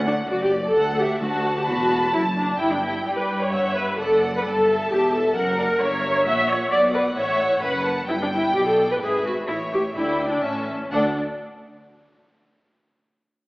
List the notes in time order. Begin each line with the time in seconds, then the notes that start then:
Already playing: D2 F#5
0.07 D4
0.30 F#1 F#2 F#4 D5
0.43 G4
0.66 A4
0.75 D2 F#5
1.00 G4 E5
1.22 D2 D3 F#4 F#5 A5
1.57 G4
1.68 E1 E2 F#4 B5
2.14 F#1 F#2 E4 A5
2.37 D4
2.60 G1 G2 E4 G5
2.72 D4
2.83 E4
3.06 G2 G3 G4 D5
3.19 B4
3.42 C#5
3.52 G1 G2 E5 F#5
3.76 B4 E5
3.99 F#1 F#2 A4 D5 F#5
4.37 B4
4.45 G1 G2 A4 D5 A5
4.69 E5
4.91 E1 E2 G4
5.13 A4
5.36 F#1 F#2 A#4 F#5
5.58 D5
5.80 G1 G2 A#4 C#5 E5
6.26 A#1 A#2 C#5 E5 F#5
6.49 C#5
6.71 B1 B2 D5 F#5
6.94 B4
7.17 A1 A2 C#5 E5
7.62 F#1 F#2 B4 F#5 B5
7.86 A5
8.08 G1 G2 E4 G5
8.22 D4
8.32 E4
8.54 B1 B2 G4 D5
8.69 A4
8.91 B4
9.01 G#1 G#2 G#4 B4 E5
9.25 F#4
9.48 A1 A2 E4 C#5 E5
9.72 G4
9.96 D2 D3 E4 D5 G5
10.29 D4
10.42 A1 A2 C#4 E5 A5
10.92 D2 D3 D4 A4 D5 F#5